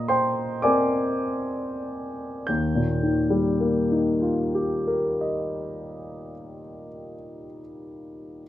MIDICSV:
0, 0, Header, 1, 2, 480
1, 0, Start_track
1, 0, Key_signature, -3, "major"
1, 0, Tempo, 1102941
1, 523, Tempo, 1255230
1, 1011, Time_signature, 6, 3, 24, 8
1, 1483, Tempo, 1212121
1, 2443, Tempo, 1265823
1, 3335, End_track
2, 0, Start_track
2, 0, Title_t, "Grand piano"
2, 0, Program_c, 0, 0
2, 0, Control_c, 0, 64, 127
2, 0, Note_on_c, 0, 46, 36
2, 0, Note_on_c, 0, 75, 50
2, 0, Note_on_c, 0, 82, 48
2, 0, Note_on_c, 0, 87, 60
2, 37, Note_on_c, 0, 84, 54
2, 40, Note_on_c, 0, 79, 44
2, 41, Note_on_c, 0, 72, 40
2, 258, Note_off_c, 0, 79, 0
2, 259, Note_off_c, 0, 72, 0
2, 271, Note_on_c, 0, 86, 54
2, 273, Note_off_c, 0, 84, 0
2, 275, Note_on_c, 0, 80, 45
2, 277, Note_on_c, 0, 74, 44
2, 280, Note_on_c, 0, 70, 30
2, 282, Note_on_c, 0, 60, 29
2, 996, Note_off_c, 0, 80, 0
2, 997, Note_off_c, 0, 46, 0
2, 997, Note_off_c, 0, 74, 0
2, 998, Note_off_c, 0, 70, 0
2, 999, Note_off_c, 0, 60, 0
2, 1007, Note_on_c, 0, 91, 41
2, 1010, Note_off_c, 0, 86, 0
2, 1013, Note_on_c, 0, 39, 33
2, 1022, Control_c, 0, 64, 0
2, 1024, Note_off_c, 0, 75, 0
2, 1026, Note_off_c, 0, 82, 0
2, 1026, Note_off_c, 0, 87, 0
2, 1116, Note_on_c, 0, 46, 34
2, 1134, Control_c, 0, 64, 127
2, 1222, Note_on_c, 0, 51, 33
2, 1326, Note_on_c, 0, 55, 31
2, 1441, Note_on_c, 0, 58, 30
2, 1563, Note_on_c, 0, 63, 29
2, 1684, Note_on_c, 0, 65, 24
2, 1813, Note_on_c, 0, 67, 30
2, 1943, Note_on_c, 0, 70, 24
2, 2076, Note_on_c, 0, 75, 25
2, 2508, Note_off_c, 0, 91, 0
2, 2515, Note_off_c, 0, 39, 0
2, 2617, Note_off_c, 0, 46, 0
2, 2722, Note_off_c, 0, 51, 0
2, 2825, Note_off_c, 0, 55, 0
2, 2939, Note_off_c, 0, 58, 0
2, 2997, Note_off_c, 0, 65, 0
2, 2998, Note_off_c, 0, 63, 0
2, 2999, Note_off_c, 0, 67, 0
2, 3000, Note_off_c, 0, 70, 0
2, 3000, Note_off_c, 0, 75, 0
2, 3311, Control_c, 0, 64, 0
2, 3335, End_track
0, 0, End_of_file